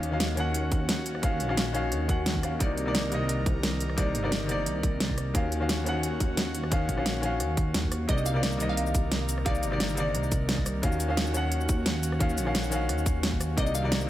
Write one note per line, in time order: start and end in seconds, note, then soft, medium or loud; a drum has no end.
0.00 0.71 D#2 medium
0.00 0.11 D#3 medium
0.00 0.12 C#4 medium
0.00 2.58 C#4 medium
0.00 0.10 F#4 medium
0.00 2.58 F#4 medium
0.00 0.11 F5 loud
0.00 closed hi-hat medium
0.11 0.34 D#3 medium
0.11 0.35 C#4 medium
0.11 0.36 F#4 medium
0.11 0.36 F5 loud
0.20 snare loud
0.20 closed hi-hat medium
0.35 1.20 D#3 medium
0.35 1.21 C#4 medium
0.35 1.22 F#4 medium
0.35 closed hi-hat medium
0.40 1.22 F#5 loud
0.54 closed hi-hat medium
0.72 1.42 D#2 medium
0.72 kick loud
0.72 closed hi-hat medium
0.89 snare loud
0.89 closed hi-hat medium
1.06 closed hi-hat medium
1.15 cross-stick soft
1.22 1.47 D#3 medium
1.22 1.47 C#4 medium
1.22 1.47 F#4 medium
1.22 1.48 F5 loud
1.22 kick loud
1.22 closed hi-hat medium
1.40 1.93 A#1 medium
1.40 closed hi-hat medium
1.48 1.72 D#3 medium
1.48 1.72 C#4 medium
1.48 1.73 F#4 medium
1.48 1.73 F5 loud
1.48 cross-stick soft
1.57 snare loud
1.57 closed hi-hat medium
1.73 2.06 D#3 loud
1.73 2.07 C#4 medium
1.73 2.07 F#4 medium
1.73 2.08 F5 loud
1.73 closed hi-hat medium
1.92 2.25 D#2 medium
1.92 cross-stick soft
1.92 closed hi-hat medium
2.08 2.40 D#3 medium
2.08 2.41 C#4 medium
2.08 2.41 F#4 medium
2.08 2.42 F#5 medium
2.08 kick loud
2.08 closed hi-hat medium
2.26 2.59 D#2 medium
2.26 snare loud
2.26 closed hi-hat medium
2.35 kick medium
2.42 2.58 D#3 medium
2.42 2.58 C#4 medium
2.42 2.59 F#4 medium
2.42 2.59 F5 medium
2.42 cross-stick medium
2.42 closed hi-hat medium
2.59 3.45 C2 medium
2.59 2.84 C3 medium
2.59 5.32 D#3 medium
2.59 2.84 A#3 medium
2.59 2.85 D#4 medium
2.59 5.32 A#4 medium
2.59 2.85 D5 medium
2.59 kick loud
2.59 closed hi-hat medium
2.78 closed hi-hat medium
2.86 3.08 C3 medium
2.86 3.10 A#3 medium
2.86 3.10 D#4 medium
2.86 3.11 D5 loud
2.95 snare loud
2.95 closed hi-hat medium
3.10 3.95 C3 medium
3.10 3.95 A#3 medium
3.10 3.96 D#4 medium
3.10 closed hi-hat medium
3.14 3.97 D#5 loud
3.29 closed hi-hat medium
3.46 4.16 C2 medium
3.46 kick loud
3.46 closed hi-hat medium
3.63 snare loud
3.63 closed hi-hat medium
3.80 closed hi-hat medium
3.90 cross-stick soft
3.97 4.21 C3 loud
3.97 4.21 A#3 medium
3.97 4.22 D#4 medium
3.97 4.22 D5 loud
3.97 kick loud
3.97 closed hi-hat medium
4.15 4.68 G1 loud
4.15 closed hi-hat medium
4.23 4.45 C3 medium
4.23 4.47 A#3 medium
4.23 4.47 D#4 medium
4.23 4.48 D5 medium
4.23 cross-stick soft
4.32 snare loud
4.32 closed hi-hat medium
4.47 5.32 C3 loud
4.47 5.32 A#3 medium
4.47 5.33 D#4 medium
4.47 closed hi-hat medium
4.51 5.34 D5 loud
4.66 5.33 C2 medium
4.66 cross-stick soft
4.66 closed hi-hat medium
4.83 kick medium
4.83 closed hi-hat medium
5.00 snare loud
5.00 closed hi-hat medium
5.09 kick medium
5.18 cross-stick medium
5.18 closed hi-hat medium
5.34 6.19 D#2 loud
5.34 5.58 D#3 medium
5.34 8.06 C#4 medium
5.34 5.59 C#4 medium
5.34 8.06 F#4 medium
5.34 5.59 F#4 medium
5.34 5.59 F5 loud
5.34 kick loud
5.34 closed hi-hat medium
5.52 closed hi-hat medium
5.60 5.83 D#3 medium
5.60 5.84 C#4 medium
5.60 5.84 F#4 medium
5.60 5.85 F5 medium
5.69 snare loud
5.69 closed hi-hat loud
5.84 6.69 D#3 medium
5.84 6.70 C#4 medium
5.84 6.70 F#4 medium
5.84 closed hi-hat medium
5.89 6.71 F#5 medium
6.03 closed hi-hat medium
6.20 6.90 D#2 medium
6.20 kick medium
6.20 closed hi-hat medium
6.37 snare loud
6.37 closed hi-hat medium
6.55 closed hi-hat medium
6.64 cross-stick soft
6.71 6.95 D#3 medium
6.71 6.96 C#4 medium
6.71 6.96 F#4 medium
6.71 6.96 F5 loud
6.71 kick loud
6.71 closed hi-hat medium
6.89 7.42 A#1 medium
6.89 kick medium
6.89 closed hi-hat medium
6.97 7.19 D#3 medium
6.97 7.21 C#4 medium
6.97 7.21 F#4 medium
6.97 7.22 F5 medium
6.97 cross-stick soft
7.06 snare loud
7.06 closed hi-hat loud
7.21 8.06 D#3 loud
7.21 8.07 C#4 medium
7.21 8.07 F#4 medium
7.21 closed hi-hat medium
7.25 8.08 F5 loud
7.40 7.74 D#2 medium
7.40 cross-stick soft
7.40 closed hi-hat medium
7.57 kick loud
7.57 closed hi-hat medium
7.74 8.07 D#2 medium
7.74 snare loud
7.74 closed hi-hat medium
7.83 kick medium
7.92 cross-stick medium
7.92 closed hi-hat medium
8.07 8.93 C2 loud
8.07 8.32 C3 medium
8.07 10.80 D#3 medium
8.07 8.33 A#3 medium
8.07 8.33 D#4 medium
8.07 10.80 A#4 medium
8.07 8.33 D5 loud
8.07 8.15 D#5 medium
8.07 kick loud
8.07 closed hi-hat medium
8.18 8.23 D#5 medium
8.18 shaker soft
8.26 8.52 F5 medium
8.26 closed hi-hat medium
8.26 shaker medium
8.34 8.56 C3 medium
8.34 8.58 A#3 medium
8.34 8.58 D#4 medium
8.34 8.59 D5 loud
8.43 snare loud
8.43 closed hi-hat loud
8.52 shaker soft
8.58 9.43 C3 medium
8.58 9.44 A#3 medium
8.58 9.44 D#4 medium
8.58 closed hi-hat medium
8.58 shaker medium
8.62 9.45 D#5 loud
8.69 9.04 F5 medium
8.77 closed hi-hat medium
8.86 shaker soft
8.95 9.65 C2 medium
8.95 kick loud
8.95 closed hi-hat medium
8.95 shaker medium
9.12 snare loud
9.12 closed hi-hat medium
9.29 closed hi-hat medium
9.29 shaker medium
9.38 cross-stick soft
9.45 9.69 C3 loud
9.45 9.70 A#3 medium
9.45 9.70 D#4 medium
9.45 9.71 D5 loud
9.45 9.72 F5 medium
9.45 kick loud
9.45 closed hi-hat medium
9.55 shaker soft
9.63 10.16 G1 medium
9.63 closed hi-hat medium
9.63 shaker medium
9.71 9.94 C3 medium
9.71 9.95 A#3 medium
9.71 9.96 D#4 medium
9.71 9.96 D5 medium
9.71 cross-stick soft
9.80 snare loud
9.80 closed hi-hat loud
9.89 shaker soft
9.95 10.80 C3 medium
9.95 10.81 A#3 medium
9.95 10.82 D#4 medium
9.95 closed hi-hat medium
9.95 shaker medium
10.00 10.82 D5 loud
10.14 10.82 C2 medium
10.14 cross-stick soft
10.14 closed hi-hat medium
10.24 shaker soft
10.32 kick loud
10.32 closed hi-hat medium
10.32 shaker medium
10.49 snare loud
10.49 closed hi-hat medium
10.58 kick medium
10.66 cross-stick medium
10.66 closed hi-hat medium
10.66 shaker medium
10.82 11.68 D#2 loud
10.82 11.07 D#3 medium
10.82 11.07 C#4 medium
10.82 13.55 C#4 medium
10.82 13.55 F#4 medium
10.82 11.07 F#4 medium
10.82 11.08 F5 loud
10.82 kick loud
10.82 closed hi-hat medium
10.92 shaker soft
11.00 closed hi-hat medium
11.00 shaker medium
11.08 11.31 D#3 medium
11.08 11.32 C#4 medium
11.08 11.33 F#4 medium
11.08 11.33 F5 loud
11.17 snare loud
11.17 closed hi-hat medium
11.26 shaker soft
11.32 12.17 D#3 medium
11.32 12.18 C#4 medium
11.32 12.19 F#4 medium
11.32 closed hi-hat medium
11.32 shaker medium
11.37 12.20 F#5 loud
11.52 closed hi-hat medium
11.61 shaker soft
11.69 12.39 D#2 medium
11.69 kick loud
11.69 closed hi-hat medium
11.69 shaker medium
11.86 snare loud
11.86 closed hi-hat medium
12.03 closed hi-hat medium
12.03 shaker medium
12.12 cross-stick soft
12.19 12.44 D#3 medium
12.19 12.44 C#4 medium
12.19 12.45 F#4 medium
12.19 12.45 F5 loud
12.19 kick loud
12.19 closed hi-hat medium
12.30 shaker soft
12.37 12.90 A#1 loud
12.37 closed hi-hat medium
12.37 shaker medium
12.45 12.68 D#3 medium
12.45 12.70 C#4 medium
12.45 12.70 F#4 medium
12.45 12.70 F5 loud
12.45 cross-stick soft
12.55 snare loud
12.55 closed hi-hat medium
12.64 shaker soft
12.70 13.55 D#3 loud
12.70 13.55 C#4 medium
12.70 13.56 F#4 medium
12.70 closed hi-hat medium
12.70 shaker medium
12.74 13.57 F5 loud
12.89 13.23 D#2 medium
12.89 cross-stick soft
12.89 closed hi-hat medium
12.98 shaker soft
13.06 kick loud
13.06 closed hi-hat medium
13.06 shaker medium
13.23 13.56 D#2 medium
13.23 snare loud
13.23 closed hi-hat medium
13.32 kick medium
13.41 cross-stick medium
13.41 closed hi-hat medium
13.41 shaker medium
13.57 14.10 C2 loud
13.57 13.81 C3 medium
13.57 14.10 D#3 medium
13.57 13.81 A#3 medium
13.57 13.82 D#4 medium
13.57 14.10 A#4 medium
13.57 13.82 D5 loud
13.57 13.63 D#5 medium
13.57 kick loud
13.57 closed hi-hat medium
13.67 13.72 D#5 medium
13.67 shaker soft
13.75 14.01 F5 medium
13.75 closed hi-hat medium
13.75 shaker medium
13.83 14.05 C3 medium
13.83 14.07 A#3 medium
13.83 14.07 D#4 medium
13.83 14.08 D5 loud
13.92 snare loud
13.92 closed hi-hat medium
14.01 shaker soft